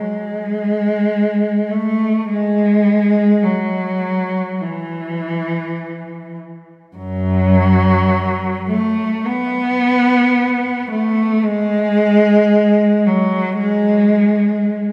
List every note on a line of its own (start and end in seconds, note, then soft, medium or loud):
0.00 1.71 G#3 medium
1.70 2.29 A3 medium
2.29 3.42 G#3 medium
3.44 4.62 F#3 medium
4.61 6.38 E3 medium
6.96 8.65 F#2 medium
6.96 8.65 F#3 medium
8.70 9.25 A3 medium
9.26 10.91 B3 medium
10.91 11.43 A3 medium
11.44 13.06 G#3 medium
13.06 13.60 F#3 medium
13.60 14.92 G#3 medium